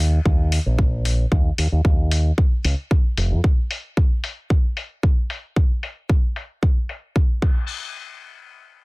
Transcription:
0.00 0.18 D#2 medium
0.25 0.58 D#2 medium
0.25 kick loud
0.52 open hi-hat loud
0.66 1.24 A#1 medium
0.79 kick loud
1.05 open hi-hat loud
1.32 1.49 D#2 medium
1.32 kick loud
1.58 1.67 D#2 medium
1.58 open hi-hat loud
1.72 1.80 D#2 medium
1.85 2.30 D#2 medium
1.85 kick loud
2.11 open hi-hat loud
2.38 kick loud
2.64 2.73 C#2 medium
2.64 open hi-hat loud
2.91 kick loud
3.17 3.33 F1 medium
3.17 open hi-hat loud
3.32 3.39 F2 medium
3.44 kick loud
3.71 open hi-hat loud
3.97 kick loud
4.24 open hi-hat loud
4.50 kick loud
4.77 open hi-hat loud
5.03 kick loud
5.30 open hi-hat loud
5.56 kick loud
5.83 open hi-hat medium
6.09 kick loud
6.36 open hi-hat loud
6.63 kick loud
6.89 open hi-hat medium
7.16 kick loud
7.42 kick loud
7.42 crash medium

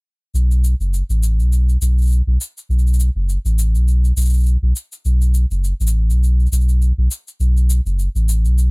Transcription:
0.34 0.74 B1 medium
0.34 cabasa soft
0.51 cabasa soft
0.64 cabasa medium
0.80 1.02 F#1 medium
0.80 cabasa soft
0.94 cabasa soft
1.09 1.40 A1 medium
1.09 cabasa soft
1.23 cabasa medium
1.39 1.77 B1 medium
1.39 cabasa soft
1.53 cabasa soft
1.69 cabasa soft
1.81 2.21 B1 medium
1.81 cabasa medium
1.98 cabasa soft
2.01 cabasa soft
2.05 cabasa soft
2.07 cabasa soft
2.10 cabasa soft
2.12 cabasa soft
2.27 2.37 B1 medium
2.41 cabasa medium
2.58 cabasa soft
2.69 3.10 B1 medium
2.69 cabasa soft
2.79 cabasa soft
2.87 cabasa soft
2.94 cabasa soft
3.00 cabasa medium
3.15 3.38 F#1 medium
3.29 cabasa soft
3.45 3.76 A1 medium
3.45 cabasa soft
3.59 cabasa medium
3.74 4.12 B1 medium
3.74 cabasa soft
3.88 cabasa soft
4.05 cabasa soft
4.16 4.57 B1 medium
4.16 cabasa medium
4.21 cabasa medium
4.25 cabasa soft
4.29 cabasa soft
4.33 cabasa soft
4.37 cabasa soft
4.40 cabasa soft
4.43 cabasa soft
4.46 cabasa soft
4.62 4.73 B1 medium
4.76 cabasa medium
4.92 cabasa soft
5.05 5.45 B1 medium
5.05 cabasa soft
5.22 cabasa soft
5.34 cabasa medium
5.51 5.73 F#1 medium
5.51 cabasa soft
5.64 cabasa soft
5.80 6.11 A1 medium
5.80 cabasa soft
5.87 cabasa medium
6.09 6.47 B1 medium
6.09 cabasa soft
6.23 cabasa soft
6.40 cabasa soft
6.46 cabasa soft
6.52 6.92 B1 medium
6.52 cabasa medium
6.69 cabasa soft
6.82 cabasa soft
6.98 7.08 B1 medium
7.11 cabasa medium
7.28 cabasa soft
7.40 7.80 B1 medium
7.40 cabasa soft
7.57 cabasa soft
7.70 cabasa medium
7.85 8.08 F#1 medium
7.85 cabasa soft
7.99 cabasa soft
8.15 8.46 A1 medium
8.15 cabasa soft
8.29 cabasa medium
8.44 8.71 B1 medium
8.44 cabasa soft
8.58 cabasa soft

